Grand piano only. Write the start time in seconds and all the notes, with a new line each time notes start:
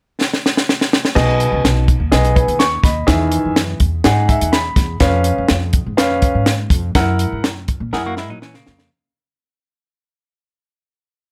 1.15 B2 B3 G#4 D#5
2.12 B3 G#4 D#5
2.35 B4 G#5
2.59 C#6
2.83 D#5 B5
3.07 D#3 E3 G#4 E5
4.05 D#4 G#4 F#5
4.29 E5
4.52 B5
5.01 C#4 B4 F5
5.97 C#4 B4 F5
6.95 E4 A#4 F#5
7.93 E4 A#4 F#5